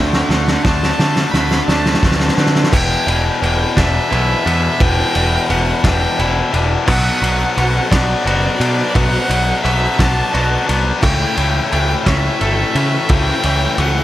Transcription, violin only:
Already playing: G5
0.31 F#5
0.63 A5
1.32 B5
1.67 A5
2.73 G5
3.42 G5
3.78 E5
4.81 G5
5.51 F#5
5.84 G5
6.90 F#5
7.57 F#5
7.91 D5
8.95 F#5
9.63 E5
9.98 A5
11.02 G5
11.71 G5
12.06 E5
13.10 G5
13.80 F#5

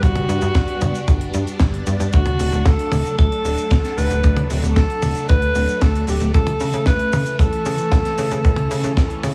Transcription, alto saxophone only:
0.02 F#4
2.13 F#4
2.66 A4
3.18 A4
3.97 B4
4.76 A4
5.29 B4
5.81 A4
6.08 G4
6.34 A4
6.87 B4
7.39 A4

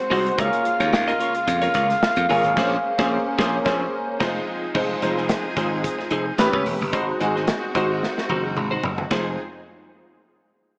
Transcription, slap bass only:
0.11 C2
0.38 C#2
0.80 D#2
0.93 D#2
1.48 F2
1.75 C#2
2.17 F2
2.29 G1
2.44 G#1
2.57 A#1
2.99 A#1
3.38 A#1
3.65 A#1
4.20 F1
4.75 F1
5.02 F1
5.57 G#1
6.11 F1
6.38 A1
6.53 C#2
6.66 E1
6.81 F#1
6.93 G#1
7.21 G#1
7.75 G#1
8.29 F#1
8.57 G#1
8.85 F#1
9.11 F1

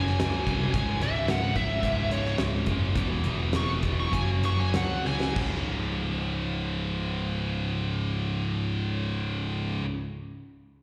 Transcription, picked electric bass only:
Already playing: F#1
0.21 C#2
0.47 C2
0.74 C#1
1.01 C#1
1.29 C#1
1.56 C#1
1.83 C#1
2.40 C#1
2.67 F#1
2.96 E1
3.25 E1
3.54 E1
3.83 E1
4.13 F#1
4.44 F#1
4.75 C#2
5.06 C#2
5.36 C#1

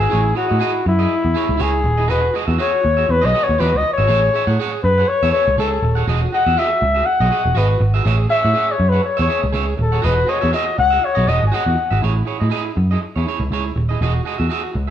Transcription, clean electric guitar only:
0.00 F#4 G#4 E5
0.09 E4 G#4 C#5
0.23 muted clean electric guitar stroke
0.35 E4 G#4 C#5
0.48 E4 G#4 D#5
0.59 E4 G#4 D#5
0.73 muted clean electric guitar stroke
0.85 muted clean electric guitar stroke
0.99 E4 G#4 D#5
1.23 muted clean electric guitar stroke
1.34 E4 G#4 C#5
1.48 muted clean electric guitar stroke
1.57 E4 G#4 C#5
1.73 muted clean electric guitar stroke
1.84 muted clean electric guitar stroke
1.97 E4 G#4 D#5
2.08 F#4 G#4 D#5
2.22 muted clean electric guitar stroke
2.34 F#4 G#4 D#5
2.47 F#4 G#4 E5
2.58 F#4 G#4 E5
2.73 muted clean electric guitar stroke
2.83 muted clean electric guitar stroke
2.97 F#4 G#4 E5
3.08 muted clean electric guitar stroke
3.21 F#4 G#4 D#5
3.33 F#4 G#4 D#5
3.46 muted clean electric guitar stroke
3.58 F#4 G#4 D#5
3.73 muted clean electric guitar stroke
3.82 muted clean electric guitar stroke
3.98 F#4 G#4 E5
4.08 G#4 C#5 E5
4.23 muted clean electric guitar stroke
4.34 G#4 C#5 E5
4.47 G#4 C#5 F#5
4.59 G#4 C#5 F#5
4.73 muted clean electric guitar stroke
4.85 muted clean electric guitar stroke
4.98 G#4 C#5 F#5
5.08 muted clean electric guitar stroke
5.23 G#4 C#5 E5
5.32 G#4 C#5 E5
5.47 muted clean electric guitar stroke
5.58 G#4 C#5 E5
5.71 muted clean electric guitar stroke
5.83 muted clean electric guitar stroke
5.95 G#4 C#5 F#5
6.07 F#4 G#4 D#5
6.22 muted clean electric guitar stroke
6.32 F#4 G#4 D#5
6.46 F#4 G#4 E5
6.57 F#4 G#4 E5
6.71 muted clean electric guitar stroke
6.82 muted clean electric guitar stroke
6.95 F#4 G#4 E5
7.06 muted clean electric guitar stroke
7.21 F#4 G#4 D#5
7.30 F#4 G#4 D#5
7.44 muted clean electric guitar stroke
7.55 F#4 G#4 D#5
7.70 muted clean electric guitar stroke
7.80 muted clean electric guitar stroke
7.94 F#4 G#4 E5
8.05 G#4 C#5 E5
8.18 muted clean electric guitar stroke
8.29 G#4 C#5 E5
8.43 G#4 C#5 F#5
8.54 G#4 C#5 F#5
8.68 muted clean electric guitar stroke
8.78 muted clean electric guitar stroke
8.92 G#4 C#5 F#5
9.04 muted clean electric guitar stroke
9.17 G#4 C#5 E5
9.28 G#4 C#5 E5
9.43 muted clean electric guitar stroke
9.52 G#4 C#5 E5
9.67 muted clean electric guitar stroke
9.77 muted clean electric guitar stroke
9.92 G#4 C#5 F#5
10.02 F#4 G#4 D#5
10.16 muted clean electric guitar stroke
10.27 F#4 G#4 D#5
10.41 F#4 G#4 E5
10.52 F#4 G#4 E5
10.67 muted clean electric guitar stroke
10.78 muted clean electric guitar stroke
10.90 F#4 G#4 E5
11.02 muted clean electric guitar stroke
11.15 F#4 G#4 D#5
11.26 F#4 G#4 D#5
11.41 muted clean electric guitar stroke
11.52 F#4 G#4 D#5
11.66 muted clean electric guitar stroke
11.77 muted clean electric guitar stroke
11.91 F#4 G#4 E5
12.02 E4 G#4 C#5
12.15 muted clean electric guitar stroke
12.25 E4 G#4 C#5
12.40 E4 G#4 D#5
12.50 E4 G#4 D#5
12.65 muted clean electric guitar stroke
12.76 muted clean electric guitar stroke
12.91 E4 G#4 D#5
13.02 muted clean electric guitar stroke
13.16 E4 G#4 C#5
13.27 E4 G#4 C#5
13.41 muted clean electric guitar stroke
13.52 E4 G#4 C#5
13.66 muted clean electric guitar stroke
13.76 muted clean electric guitar stroke
13.89 E4 G#4 D#5
14.02 F#4 G#4 D#5
14.15 muted clean electric guitar stroke
14.25 F#4 G#4 D#5
14.38 F#4 G#4 E5
14.49 F#4 G#4 E5
14.63 muted clean electric guitar stroke
14.73 muted clean electric guitar stroke

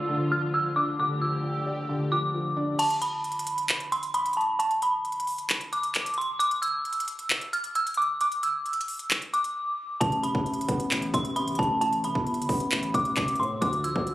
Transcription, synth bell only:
Already playing: E6
0.32 F6
0.54 E6
0.76 D6
1.00 D6
1.22 E6
2.12 D6
2.79 A5
3.02 B5
3.92 C6
4.14 B5
4.37 A5
4.59 A5
4.83 B5
5.73 D6
6.18 C6
6.39 D6
6.62 E6
7.53 F6
7.75 E6
7.97 D6
8.21 D6
8.43 E6
9.34 D6
10.01 A5
10.23 B5
11.14 C6
11.36 B5
11.59 A5
11.81 A5
12.04 B5
12.95 D6
13.40 C6
13.61 D6
13.84 E6

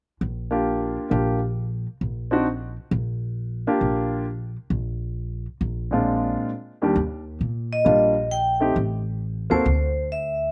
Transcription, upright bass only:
0.21 A#1
1.11 A#1
2.01 A#1
2.91 A#1
3.81 A#1
4.70 A#1
5.61 A#1
6.96 D#2
7.41 A#2
7.86 A#1
8.76 A1
9.51 D#2
9.66 D2

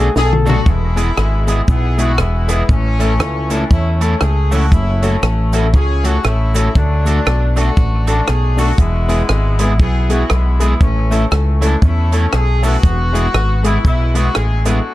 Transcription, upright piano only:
0.46 A3 D4 F#4 A4
0.96 G#3 B3 E4 G#4
1.47 G#3 B3 E4 G#4
1.98 G#3 B3 E4 G#4
2.48 G#3 B3 E4 G#4
2.99 A3 C#4 E4 A4
3.49 A3 C#4 E4 A4
4.01 A3 C#4 E4 A4
4.21 E4 A4
4.51 A3 C#4 E4 A4
5.02 A3 C#4 F#4 A4
5.53 A3 C#4 F#4 A4
6.03 A3 C#4 F#4 A4
6.24 F#4 A4
6.54 A3 C#4 F#4 A4
7.05 A3 D4 F#4 A4
7.56 A3 D4 F#4 A4
8.07 A3 D4 F#4 A4
8.27 F#4 A4
8.56 A3 D4 F#4 A4
9.08 G#3 B3 E4 G#4
9.59 G#3 B3 E4 G#4
10.09 G#3 B3 E4 G#4
10.30 E4 G#4
10.59 G#3 B3 E4 G#4
11.10 A3 C#4 E4 A4
11.61 A3 C#4 E4 A4
12.12 A3 C#4 E4 A4
12.62 A3 C#4 E4 A4
13.12 G#3 B3 E4 G#4
13.63 G#3 B3 E4 G#4
14.14 G#3 B3 E4 G#4
14.35 E4 G#4
14.65 G#3 B3 E4 G#4

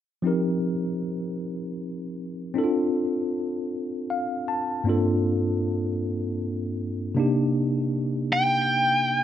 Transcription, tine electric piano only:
0.22 F3 C4 D#4
0.27 G4 A#4
2.54 C4 D4 E4
2.58 A4
2.64 F4
4.10 F5
4.48 A5
4.84 G2 A#3 C4 D4 F4
4.89 A4
7.15 C3 A#3 D4 D#4
7.20 G4

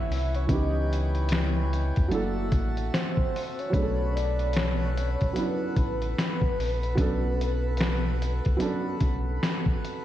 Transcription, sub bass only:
0.10 C2
0.50 C#2
1.98 E2
2.12 F#1
2.53 A1
3.74 B1
5.22 B1
5.77 A1
6.58 A#1
6.98 B1
8.47 C#2
9.01 B1

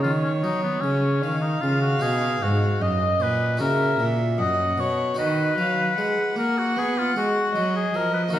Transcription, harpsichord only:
Already playing: A#3 C#4
0.04 D#3
0.44 F#3
0.84 C#3
1.24 D#3
1.63 C#3
1.99 B2 D#4 F#4
2.43 G#2
2.82 F#2
3.20 A#2
3.57 C#3 E4 F#4
3.99 A#2
4.38 F#2
4.78 B2
5.15 D#3 D#4 F#4
5.58 F#3
5.98 G#3
6.36 A#3
6.76 B3
7.16 G#3
7.56 F#3
7.94 F3
8.29 A#3 F#4
8.33 D#3

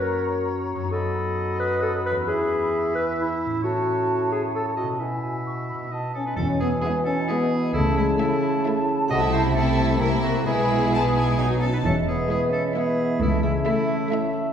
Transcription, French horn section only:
6.16 C#4
6.39 C#4
6.62 B3
6.83 B3
7.06 C#4
7.29 B3
7.74 A3
7.98 G#3
8.18 A3
9.09 F#4
9.32 E4
9.57 C4
10.00 A#3
10.23 A3
10.47 B3
11.62 C#4
11.72 D#4
11.84 C#4
12.08 B3
12.31 B3
12.51 C#4
12.76 B3
13.20 A3
13.43 G#3
13.68 A3

